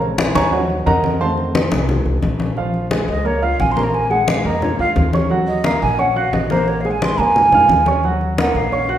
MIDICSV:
0, 0, Header, 1, 5, 480
1, 0, Start_track
1, 0, Key_signature, -5, "minor"
1, 0, Tempo, 341686
1, 1693, Time_signature, 4, 2, 24, 8
1, 12618, End_track
2, 0, Start_track
2, 0, Title_t, "Flute"
2, 0, Program_c, 0, 73
2, 4338, Note_on_c, 0, 75, 88
2, 4581, Note_on_c, 0, 73, 78
2, 4602, Note_off_c, 0, 75, 0
2, 4818, Note_on_c, 0, 77, 89
2, 4839, Note_off_c, 0, 73, 0
2, 5060, Note_on_c, 0, 80, 81
2, 5081, Note_off_c, 0, 77, 0
2, 5216, Note_on_c, 0, 84, 94
2, 5237, Note_off_c, 0, 80, 0
2, 5377, Note_on_c, 0, 82, 76
2, 5399, Note_off_c, 0, 84, 0
2, 5537, Note_on_c, 0, 80, 76
2, 5558, Note_off_c, 0, 82, 0
2, 5762, Note_on_c, 0, 78, 82
2, 5783, Note_off_c, 0, 80, 0
2, 6019, Note_on_c, 0, 77, 82
2, 6040, Note_off_c, 0, 78, 0
2, 6253, Note_off_c, 0, 77, 0
2, 6261, Note_on_c, 0, 75, 89
2, 6497, Note_on_c, 0, 73, 74
2, 6519, Note_off_c, 0, 75, 0
2, 6730, Note_off_c, 0, 73, 0
2, 6739, Note_on_c, 0, 77, 101
2, 6882, Note_off_c, 0, 77, 0
2, 7686, Note_on_c, 0, 75, 92
2, 7940, Note_on_c, 0, 77, 83
2, 7961, Note_off_c, 0, 75, 0
2, 8157, Note_off_c, 0, 77, 0
2, 8165, Note_on_c, 0, 80, 92
2, 8414, Note_on_c, 0, 78, 75
2, 8435, Note_off_c, 0, 80, 0
2, 8649, Note_on_c, 0, 77, 93
2, 8670, Note_off_c, 0, 78, 0
2, 8890, Note_on_c, 0, 75, 82
2, 8911, Note_off_c, 0, 77, 0
2, 9134, Note_on_c, 0, 72, 81
2, 9155, Note_off_c, 0, 75, 0
2, 9378, Note_on_c, 0, 73, 74
2, 9399, Note_off_c, 0, 72, 0
2, 9557, Note_on_c, 0, 77, 73
2, 9578, Note_off_c, 0, 73, 0
2, 9701, Note_on_c, 0, 80, 80
2, 9722, Note_off_c, 0, 77, 0
2, 9867, Note_on_c, 0, 84, 93
2, 9888, Note_off_c, 0, 80, 0
2, 10114, Note_on_c, 0, 80, 99
2, 10135, Note_off_c, 0, 84, 0
2, 11301, Note_off_c, 0, 80, 0
2, 11781, Note_on_c, 0, 78, 77
2, 12029, Note_on_c, 0, 77, 90
2, 12050, Note_off_c, 0, 78, 0
2, 12618, Note_off_c, 0, 77, 0
2, 12618, End_track
3, 0, Start_track
3, 0, Title_t, "Grand piano"
3, 0, Program_c, 1, 0
3, 0, Note_on_c, 1, 49, 58
3, 0, Note_on_c, 1, 56, 52
3, 0, Note_on_c, 1, 60, 62
3, 494, Note_on_c, 1, 80, 89
3, 496, Note_on_c, 1, 85, 106
3, 497, Note_on_c, 1, 82, 84
3, 501, Note_on_c, 1, 73, 88
3, 674, Note_off_c, 1, 49, 0
3, 678, Note_off_c, 1, 56, 0
3, 684, Note_off_c, 1, 60, 0
3, 714, Note_off_c, 1, 73, 0
3, 718, Note_on_c, 1, 53, 56
3, 725, Note_on_c, 1, 54, 57
3, 726, Note_off_c, 1, 80, 0
3, 727, Note_off_c, 1, 82, 0
3, 727, Note_off_c, 1, 85, 0
3, 729, Note_on_c, 1, 78, 66
3, 733, Note_on_c, 1, 61, 65
3, 735, Note_on_c, 1, 73, 52
3, 736, Note_on_c, 1, 75, 55
3, 739, Note_on_c, 1, 66, 53
3, 1044, Note_off_c, 1, 53, 0
3, 1047, Note_off_c, 1, 54, 0
3, 1052, Note_off_c, 1, 61, 0
3, 1177, Note_off_c, 1, 78, 0
3, 1180, Note_off_c, 1, 73, 0
3, 1181, Note_off_c, 1, 75, 0
3, 1182, Note_off_c, 1, 66, 0
3, 1213, Note_on_c, 1, 70, 70
3, 1213, Note_on_c, 1, 82, 97
3, 1216, Note_on_c, 1, 75, 80
3, 1220, Note_on_c, 1, 78, 77
3, 1659, Note_off_c, 1, 70, 0
3, 1659, Note_off_c, 1, 82, 0
3, 1661, Note_off_c, 1, 75, 0
3, 1663, Note_off_c, 1, 78, 0
3, 1682, Note_on_c, 1, 51, 56
3, 1689, Note_on_c, 1, 57, 50
3, 1696, Note_on_c, 1, 77, 74
3, 1697, Note_on_c, 1, 81, 85
3, 1697, Note_on_c, 1, 84, 101
3, 1698, Note_on_c, 1, 72, 76
3, 1700, Note_on_c, 1, 60, 67
3, 1839, Note_off_c, 1, 77, 0
3, 1840, Note_off_c, 1, 72, 0
3, 1840, Note_off_c, 1, 81, 0
3, 1840, Note_off_c, 1, 84, 0
3, 2371, Note_off_c, 1, 51, 0
3, 2375, Note_off_c, 1, 57, 0
3, 2381, Note_off_c, 1, 60, 0
3, 3614, Note_on_c, 1, 53, 77
3, 3618, Note_on_c, 1, 65, 72
3, 3621, Note_on_c, 1, 77, 79
3, 4008, Note_off_c, 1, 53, 0
3, 4011, Note_off_c, 1, 65, 0
3, 4012, Note_off_c, 1, 77, 0
3, 4088, Note_on_c, 1, 56, 66
3, 4095, Note_on_c, 1, 68, 66
3, 4099, Note_on_c, 1, 80, 71
3, 4484, Note_off_c, 1, 56, 0
3, 4489, Note_off_c, 1, 68, 0
3, 4491, Note_off_c, 1, 80, 0
3, 4562, Note_on_c, 1, 58, 72
3, 4564, Note_on_c, 1, 70, 67
3, 4572, Note_on_c, 1, 82, 73
3, 4764, Note_off_c, 1, 58, 0
3, 4765, Note_off_c, 1, 70, 0
3, 4770, Note_off_c, 1, 82, 0
3, 4807, Note_on_c, 1, 65, 77
3, 4811, Note_on_c, 1, 77, 76
3, 4814, Note_on_c, 1, 89, 75
3, 5204, Note_off_c, 1, 65, 0
3, 5206, Note_off_c, 1, 77, 0
3, 5208, Note_off_c, 1, 89, 0
3, 5288, Note_on_c, 1, 58, 73
3, 5290, Note_on_c, 1, 70, 74
3, 5294, Note_on_c, 1, 82, 69
3, 5684, Note_off_c, 1, 58, 0
3, 5686, Note_off_c, 1, 70, 0
3, 5688, Note_off_c, 1, 82, 0
3, 5767, Note_on_c, 1, 56, 75
3, 5777, Note_on_c, 1, 68, 75
3, 5782, Note_on_c, 1, 80, 75
3, 6164, Note_off_c, 1, 56, 0
3, 6170, Note_off_c, 1, 68, 0
3, 6173, Note_off_c, 1, 80, 0
3, 6254, Note_on_c, 1, 58, 71
3, 6258, Note_on_c, 1, 70, 72
3, 6263, Note_on_c, 1, 82, 66
3, 6648, Note_off_c, 1, 58, 0
3, 6651, Note_off_c, 1, 70, 0
3, 6653, Note_off_c, 1, 82, 0
3, 6743, Note_on_c, 1, 65, 80
3, 6745, Note_on_c, 1, 77, 80
3, 6753, Note_on_c, 1, 89, 75
3, 7133, Note_off_c, 1, 65, 0
3, 7135, Note_off_c, 1, 77, 0
3, 7139, Note_off_c, 1, 89, 0
3, 7217, Note_on_c, 1, 61, 69
3, 7220, Note_on_c, 1, 73, 71
3, 7228, Note_on_c, 1, 85, 70
3, 7413, Note_off_c, 1, 61, 0
3, 7415, Note_off_c, 1, 73, 0
3, 7419, Note_off_c, 1, 85, 0
3, 7449, Note_on_c, 1, 54, 79
3, 7455, Note_on_c, 1, 66, 77
3, 7460, Note_on_c, 1, 78, 79
3, 7845, Note_off_c, 1, 54, 0
3, 7849, Note_off_c, 1, 66, 0
3, 7852, Note_off_c, 1, 78, 0
3, 7935, Note_on_c, 1, 58, 67
3, 7942, Note_on_c, 1, 70, 74
3, 7946, Note_on_c, 1, 82, 75
3, 8328, Note_off_c, 1, 58, 0
3, 8332, Note_off_c, 1, 70, 0
3, 8335, Note_off_c, 1, 82, 0
3, 8405, Note_on_c, 1, 61, 75
3, 8408, Note_on_c, 1, 73, 69
3, 8412, Note_on_c, 1, 85, 74
3, 8606, Note_off_c, 1, 61, 0
3, 8607, Note_off_c, 1, 73, 0
3, 8610, Note_off_c, 1, 85, 0
3, 8649, Note_on_c, 1, 66, 80
3, 8658, Note_on_c, 1, 78, 75
3, 8660, Note_on_c, 1, 90, 81
3, 9044, Note_off_c, 1, 66, 0
3, 9050, Note_off_c, 1, 78, 0
3, 9051, Note_off_c, 1, 90, 0
3, 9143, Note_on_c, 1, 58, 73
3, 9144, Note_on_c, 1, 70, 73
3, 9155, Note_on_c, 1, 82, 78
3, 9533, Note_off_c, 1, 58, 0
3, 9533, Note_off_c, 1, 70, 0
3, 9539, Note_off_c, 1, 82, 0
3, 9622, Note_on_c, 1, 56, 73
3, 9625, Note_on_c, 1, 68, 77
3, 9634, Note_on_c, 1, 80, 73
3, 10011, Note_off_c, 1, 56, 0
3, 10013, Note_off_c, 1, 68, 0
3, 10018, Note_off_c, 1, 80, 0
3, 10102, Note_on_c, 1, 58, 70
3, 10103, Note_on_c, 1, 70, 75
3, 10107, Note_on_c, 1, 82, 69
3, 10491, Note_off_c, 1, 58, 0
3, 10492, Note_off_c, 1, 70, 0
3, 10494, Note_off_c, 1, 82, 0
3, 10587, Note_on_c, 1, 65, 73
3, 10587, Note_on_c, 1, 77, 73
3, 10595, Note_on_c, 1, 89, 83
3, 10974, Note_off_c, 1, 65, 0
3, 10974, Note_off_c, 1, 77, 0
3, 10979, Note_off_c, 1, 89, 0
3, 11057, Note_on_c, 1, 61, 71
3, 11063, Note_on_c, 1, 73, 65
3, 11067, Note_on_c, 1, 85, 71
3, 11251, Note_off_c, 1, 61, 0
3, 11254, Note_off_c, 1, 73, 0
3, 11257, Note_off_c, 1, 85, 0
3, 11295, Note_on_c, 1, 54, 81
3, 11303, Note_on_c, 1, 66, 73
3, 11305, Note_on_c, 1, 78, 78
3, 11686, Note_off_c, 1, 54, 0
3, 11691, Note_off_c, 1, 66, 0
3, 11692, Note_off_c, 1, 78, 0
3, 11775, Note_on_c, 1, 58, 71
3, 11783, Note_on_c, 1, 70, 77
3, 11785, Note_on_c, 1, 82, 75
3, 12166, Note_off_c, 1, 58, 0
3, 12170, Note_off_c, 1, 70, 0
3, 12171, Note_off_c, 1, 82, 0
3, 12249, Note_on_c, 1, 61, 72
3, 12253, Note_on_c, 1, 73, 74
3, 12262, Note_on_c, 1, 85, 73
3, 12446, Note_off_c, 1, 61, 0
3, 12448, Note_off_c, 1, 73, 0
3, 12453, Note_off_c, 1, 85, 0
3, 12483, Note_on_c, 1, 66, 78
3, 12487, Note_on_c, 1, 78, 75
3, 12489, Note_on_c, 1, 90, 77
3, 12618, Note_off_c, 1, 66, 0
3, 12618, Note_off_c, 1, 78, 0
3, 12618, Note_off_c, 1, 90, 0
3, 12618, End_track
4, 0, Start_track
4, 0, Title_t, "Upright bass"
4, 0, Program_c, 2, 32
4, 0, Note_on_c, 2, 34, 89
4, 410, Note_off_c, 2, 34, 0
4, 489, Note_on_c, 2, 39, 93
4, 1161, Note_off_c, 2, 39, 0
4, 1215, Note_on_c, 2, 41, 93
4, 2334, Note_off_c, 2, 41, 0
4, 2413, Note_on_c, 2, 36, 92
4, 2860, Note_off_c, 2, 36, 0
4, 2885, Note_on_c, 2, 36, 71
4, 3113, Note_off_c, 2, 36, 0
4, 3135, Note_on_c, 2, 34, 95
4, 4255, Note_off_c, 2, 34, 0
4, 4327, Note_on_c, 2, 37, 83
4, 5000, Note_off_c, 2, 37, 0
4, 5050, Note_on_c, 2, 34, 95
4, 6173, Note_off_c, 2, 34, 0
4, 6245, Note_on_c, 2, 41, 84
4, 6697, Note_off_c, 2, 41, 0
4, 6729, Note_on_c, 2, 41, 75
4, 6955, Note_off_c, 2, 41, 0
4, 6970, Note_on_c, 2, 39, 94
4, 8092, Note_off_c, 2, 39, 0
4, 8177, Note_on_c, 2, 34, 90
4, 8845, Note_off_c, 2, 34, 0
4, 8897, Note_on_c, 2, 34, 93
4, 10014, Note_off_c, 2, 34, 0
4, 10089, Note_on_c, 2, 41, 81
4, 10536, Note_off_c, 2, 41, 0
4, 10564, Note_on_c, 2, 41, 73
4, 10790, Note_off_c, 2, 41, 0
4, 10798, Note_on_c, 2, 39, 89
4, 11922, Note_off_c, 2, 39, 0
4, 12006, Note_on_c, 2, 34, 82
4, 12618, Note_off_c, 2, 34, 0
4, 12618, End_track
5, 0, Start_track
5, 0, Title_t, "Drums"
5, 25, Note_on_c, 9, 63, 34
5, 166, Note_off_c, 9, 63, 0
5, 257, Note_on_c, 9, 63, 107
5, 397, Note_off_c, 9, 63, 0
5, 497, Note_on_c, 9, 63, 94
5, 638, Note_off_c, 9, 63, 0
5, 744, Note_on_c, 9, 63, 37
5, 884, Note_off_c, 9, 63, 0
5, 985, Note_on_c, 9, 63, 35
5, 1126, Note_off_c, 9, 63, 0
5, 1222, Note_on_c, 9, 63, 90
5, 1362, Note_off_c, 9, 63, 0
5, 1459, Note_on_c, 9, 63, 80
5, 1599, Note_off_c, 9, 63, 0
5, 1707, Note_on_c, 9, 63, 34
5, 1847, Note_off_c, 9, 63, 0
5, 1932, Note_on_c, 9, 63, 33
5, 2072, Note_off_c, 9, 63, 0
5, 2177, Note_on_c, 9, 63, 99
5, 2318, Note_off_c, 9, 63, 0
5, 2410, Note_on_c, 9, 63, 87
5, 2551, Note_off_c, 9, 63, 0
5, 2653, Note_on_c, 9, 63, 37
5, 2653, Note_on_c, 9, 64, 88
5, 2794, Note_off_c, 9, 63, 0
5, 2794, Note_off_c, 9, 64, 0
5, 2890, Note_on_c, 9, 63, 35
5, 3030, Note_off_c, 9, 63, 0
5, 3125, Note_on_c, 9, 63, 79
5, 3265, Note_off_c, 9, 63, 0
5, 3367, Note_on_c, 9, 63, 80
5, 3507, Note_off_c, 9, 63, 0
5, 3606, Note_on_c, 9, 63, 32
5, 3746, Note_off_c, 9, 63, 0
5, 3847, Note_on_c, 9, 63, 33
5, 3987, Note_off_c, 9, 63, 0
5, 4087, Note_on_c, 9, 63, 90
5, 4227, Note_off_c, 9, 63, 0
5, 4573, Note_on_c, 9, 63, 33
5, 4714, Note_off_c, 9, 63, 0
5, 4811, Note_on_c, 9, 63, 36
5, 4952, Note_off_c, 9, 63, 0
5, 5053, Note_on_c, 9, 63, 75
5, 5193, Note_off_c, 9, 63, 0
5, 5293, Note_on_c, 9, 63, 78
5, 5434, Note_off_c, 9, 63, 0
5, 5538, Note_on_c, 9, 63, 32
5, 5678, Note_off_c, 9, 63, 0
5, 5772, Note_on_c, 9, 63, 34
5, 5913, Note_off_c, 9, 63, 0
5, 6010, Note_on_c, 9, 63, 100
5, 6150, Note_off_c, 9, 63, 0
5, 6255, Note_on_c, 9, 63, 35
5, 6395, Note_off_c, 9, 63, 0
5, 6492, Note_on_c, 9, 63, 35
5, 6492, Note_on_c, 9, 64, 83
5, 6633, Note_off_c, 9, 63, 0
5, 6633, Note_off_c, 9, 64, 0
5, 6739, Note_on_c, 9, 63, 36
5, 6879, Note_off_c, 9, 63, 0
5, 6965, Note_on_c, 9, 63, 79
5, 7106, Note_off_c, 9, 63, 0
5, 7211, Note_on_c, 9, 63, 86
5, 7351, Note_off_c, 9, 63, 0
5, 7450, Note_on_c, 9, 63, 34
5, 7591, Note_off_c, 9, 63, 0
5, 7696, Note_on_c, 9, 63, 34
5, 7837, Note_off_c, 9, 63, 0
5, 7925, Note_on_c, 9, 63, 91
5, 8065, Note_off_c, 9, 63, 0
5, 8413, Note_on_c, 9, 63, 34
5, 8554, Note_off_c, 9, 63, 0
5, 8656, Note_on_c, 9, 63, 36
5, 8796, Note_off_c, 9, 63, 0
5, 8893, Note_on_c, 9, 63, 86
5, 9034, Note_off_c, 9, 63, 0
5, 9132, Note_on_c, 9, 63, 84
5, 9272, Note_off_c, 9, 63, 0
5, 9380, Note_on_c, 9, 63, 34
5, 9520, Note_off_c, 9, 63, 0
5, 9619, Note_on_c, 9, 63, 34
5, 9760, Note_off_c, 9, 63, 0
5, 9861, Note_on_c, 9, 63, 92
5, 10002, Note_off_c, 9, 63, 0
5, 10101, Note_on_c, 9, 63, 34
5, 10241, Note_off_c, 9, 63, 0
5, 10338, Note_on_c, 9, 63, 34
5, 10338, Note_on_c, 9, 64, 82
5, 10479, Note_off_c, 9, 63, 0
5, 10479, Note_off_c, 9, 64, 0
5, 10567, Note_on_c, 9, 63, 39
5, 10567, Note_on_c, 9, 64, 77
5, 10708, Note_off_c, 9, 63, 0
5, 10708, Note_off_c, 9, 64, 0
5, 10809, Note_on_c, 9, 63, 83
5, 10949, Note_off_c, 9, 63, 0
5, 11042, Note_on_c, 9, 63, 83
5, 11182, Note_off_c, 9, 63, 0
5, 11285, Note_on_c, 9, 63, 31
5, 11426, Note_off_c, 9, 63, 0
5, 11534, Note_on_c, 9, 63, 35
5, 11675, Note_off_c, 9, 63, 0
5, 11777, Note_on_c, 9, 63, 96
5, 11917, Note_off_c, 9, 63, 0
5, 12254, Note_on_c, 9, 63, 35
5, 12394, Note_off_c, 9, 63, 0
5, 12491, Note_on_c, 9, 63, 36
5, 12618, Note_off_c, 9, 63, 0
5, 12618, End_track
0, 0, End_of_file